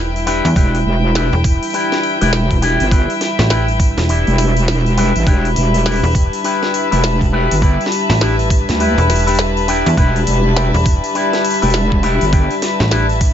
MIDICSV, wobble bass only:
0, 0, Header, 1, 2, 480
1, 0, Start_track
1, 0, Key_signature, 1, "minor"
1, 0, Tempo, 588235
1, 460, Time_signature, 4, 2, 24, 8
1, 10880, End_track
2, 0, Start_track
2, 0, Title_t, "Wobble bass"
2, 0, Program_c, 0, 39
2, 458, Note_on_c, 0, 28, 90
2, 684, Note_off_c, 0, 28, 0
2, 699, Note_on_c, 0, 28, 102
2, 1063, Note_off_c, 0, 28, 0
2, 1807, Note_on_c, 0, 28, 92
2, 2263, Note_off_c, 0, 28, 0
2, 2287, Note_on_c, 0, 31, 101
2, 2503, Note_off_c, 0, 31, 0
2, 3488, Note_on_c, 0, 28, 94
2, 4184, Note_off_c, 0, 28, 0
2, 4208, Note_on_c, 0, 33, 102
2, 4285, Note_off_c, 0, 33, 0
2, 4298, Note_on_c, 0, 28, 93
2, 4524, Note_off_c, 0, 28, 0
2, 4543, Note_on_c, 0, 28, 104
2, 4905, Note_off_c, 0, 28, 0
2, 5648, Note_on_c, 0, 28, 98
2, 6104, Note_off_c, 0, 28, 0
2, 6130, Note_on_c, 0, 31, 100
2, 6345, Note_off_c, 0, 31, 0
2, 7088, Note_on_c, 0, 38, 102
2, 7304, Note_off_c, 0, 38, 0
2, 8139, Note_on_c, 0, 28, 97
2, 8365, Note_off_c, 0, 28, 0
2, 8382, Note_on_c, 0, 28, 102
2, 8744, Note_off_c, 0, 28, 0
2, 9487, Note_on_c, 0, 28, 101
2, 9944, Note_off_c, 0, 28, 0
2, 9969, Note_on_c, 0, 31, 104
2, 10184, Note_off_c, 0, 31, 0
2, 10880, End_track
0, 0, End_of_file